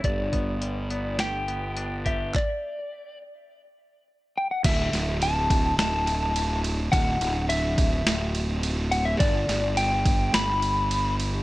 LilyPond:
<<
  \new Staff \with { instrumentName = "Electric slide guitar" } { \time 4/4 \key d \major \tempo 4 = 105 d''2 g''4. e''8 | d''4. r2 g''16 fis''16 | e''4 a''4 a''4. r8 | fis''4 e''4. r4 fis''16 e''16 |
d''4 g''4 b''4. r8 | }
  \new Staff \with { instrumentName = "Clean electric guitar" } { \time 4/4 \key d \major g,8 b8 g8 b8 g'8 b8 d'8 g'8 | r1 | r1 | r1 |
r1 | }
  \new Staff \with { instrumentName = "Fingered electric bass" } { \clef bass \time 4/4 \key d \major g,,1 | r1 | d,,8 d,,4. d,,2 | d,,8 d,,4. d,,2 |
g,,8 g,,4. g,,2 | }
  \new DrumStaff \with { instrumentName = "Drums" } \drummode { \time 4/4 <hh bd>8 <hh bd>8 hh8 hh8 <hh sn>8 hh8 hh8 <hh bd>8 | <hc bd>4 r4 r4 r4 | <cymc bd cymr>8 <cymr sn>8 cymr8 <bd cymr>8 <cymr sn>8 cymr8 cymr8 cymr8 | <bd cymr>8 cymr8 cymr8 <bd cymr>8 <cymr sn>8 cymr8 cymr8 cymr8 |
<bd cymr>8 <cymr sn>8 cymr8 <bd cymr>8 <cymr sn>8 cymr8 cymr8 cymr8 | }
>>